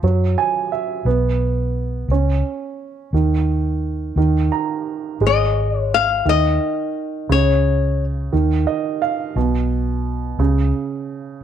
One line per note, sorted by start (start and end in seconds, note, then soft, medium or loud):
0.03 0.35 F#2 medium
0.03 1.04 F#3 soft
0.38 0.70 G#5 medium
0.72 1.04 E5 medium
1.05 2.05 B1 medium
1.05 2.06 B3 medium
2.08 2.41 C#2 medium
2.08 3.11 C#4 medium
3.13 4.13 D#2 medium
3.13 4.14 D#3 soft
4.16 4.49 D#2 medium
4.16 5.18 D#3 medium
4.52 5.17 A#5 medium
5.21 6.21 G#1 medium
5.21 6.22 G#3 soft
5.27 5.78 D#5 medium
5.78 5.94 C#5 medium
5.94 6.28 F5 medium
6.25 6.57 D#2 medium
6.25 7.26 D#3 medium
6.25 7.32 D#5 medium
7.29 8.28 C#2 medium
7.29 8.29 C#3 medium
7.29 8.04 C#5 medium
8.33 8.65 D#2 medium
8.33 9.33 D#3 medium
8.67 8.99 D#5 medium
9.02 9.34 F5 medium
9.36 10.35 B1 medium
9.36 10.36 B2 medium
10.38 10.71 C#2 medium
10.38 11.40 C#3 medium